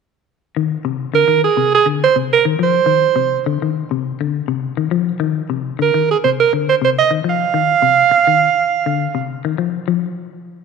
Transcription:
0.56 clean electric guitar D#3
0.85 clean electric guitar C3
1.14 clean electric guitar D3, alto saxophone A#4
1.28 clean electric guitar D#3
1.44 alto saxophone G#4
1.57 clean electric guitar C3
1.74 alto saxophone G#4
1.86 clean electric guitar D3
2.04 alto saxophone C5
2.16 clean electric guitar C3
2.33 alto saxophone A#4
2.45 clean electric guitar D#3
2.59 clean electric guitar F3
2.63 alto saxophone C5
2.86 clean electric guitar D#3
3.16 clean electric guitar C3
3.46 clean electric guitar D3
3.62 clean electric guitar D#3
3.91 clean electric guitar C3
4.21 clean electric guitar D3
4.48 clean electric guitar C3
4.77 clean electric guitar D#3
4.91 clean electric guitar F3
5.20 clean electric guitar D#3
5.50 clean electric guitar C3
5.79 clean electric guitar D3, alto saxophone A#4
5.94 clean electric guitar D#3
6.11 alto saxophone G#4
6.24 clean electric guitar C3, alto saxophone C5
6.40 alto saxophone A#4
6.53 clean electric guitar D3
6.69 alto saxophone C5
6.82 clean electric guitar C3, alto saxophone C5
6.99 alto saxophone D#5
7.11 clean electric guitar D#3
7.24 clean electric guitar F3
7.29 alto saxophone F5
7.54 clean electric guitar D#3
7.82 clean electric guitar C3
8.11 muted clean electric guitar stroke
8.27 clean electric guitar D#3
8.86 clean electric guitar D3
9.15 clean electric guitar C3
9.45 clean electric guitar D#3
9.58 clean electric guitar F3
9.88 clean electric guitar F3

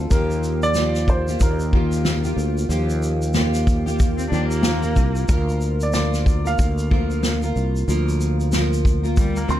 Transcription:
Already playing: steel-string acoustic guitar C4 F4 A4
0.10 fretless electric bass D#2, steel-string acoustic guitar F3 A#3 F4 G4, upright piano A#4, kick, shaker
0.31 shaker
0.43 shaker
0.63 upright piano D5, shaker
0.74 steel-string acoustic guitar F3 A#3 G4, snare, shaker
0.79 steel-string acoustic guitar F4
0.95 snare, shaker
1.08 upright piano C5, kick, shaker
1.28 steel-string acoustic guitar A#3 F4 G4, shaker
1.40 fretless electric bass D#2, upright piano A#4, kick, shaker
1.60 shaker
1.73 steel-string acoustic guitar D#3 F3 A#3 F4 G4, kick
1.92 shaker
2.05 snare, shaker
2.24 steel-string acoustic guitar A#3 F4 G4, shaker
2.36 fretless electric bass D2, shaker
2.58 shaker
2.69 fretless electric bass D#2, steel-string acoustic guitar F3 A#3 F4 G4, shaker
2.90 shaker
3.03 shaker
3.22 shaker
3.33 steel-string acoustic guitar F3 A#3 F4 G4, snare, shaker
3.54 snare, shaker
3.67 kick, shaker
3.86 steel-string acoustic guitar A#3 F4 G4, shaker
4.00 kick, shaker
4.17 cello C4, shaker
4.31 fretless electric bass D#2, steel-string acoustic guitar D#3 F3 A#3 F4 G4, cello D4, shaker
4.49 cello A#3, shaker
4.63 snare, shaker
4.83 steel-string acoustic guitar A#3 F4 G4, shaker
4.95 fretless electric bass C2, kick, shaker
5.16 shaker
5.28 fretless electric bass D2, steel-string acoustic guitar F3 A#3 F4 A#4, upright piano A#4, kick, shaker
5.49 shaker
5.61 shaker
5.81 upright piano D5, shaker
5.93 steel-string acoustic guitar F3 A#3 F4 A#4, upright piano D5, snare, shaker
6.14 snare, shaker
6.26 kick, shaker
6.45 steel-string acoustic guitar A#3 F4 A#4, upright piano F5, shaker
6.59 fretless electric bass D2, kick, shaker
6.78 shaker
6.91 steel-string acoustic guitar D3 F3 A#3 F4 A#4, kick
7.11 shaker
7.23 snare, shaker
7.42 steel-string acoustic guitar A#3 F4 A#4, shaker
7.56 fretless electric bass C2, shaker
7.76 shaker
7.88 fretless electric bass D2, steel-string acoustic guitar F3 A#3 F4 A#4, shaker
8.09 shaker
8.21 shaker
8.40 shaker
8.52 steel-string acoustic guitar F3 A#3 F4 A#4, snare, shaker
8.73 shaker
8.85 kick, shaker
9.03 steel-string acoustic guitar A#3 F4 A#4, shaker
9.17 cello G3, kick, shaker
9.36 cello A#3, shaker
9.48 fretless electric bass D2, steel-string acoustic guitar D3 F3 A#3 F4 A#4, cello C4, upright piano C6, shaker

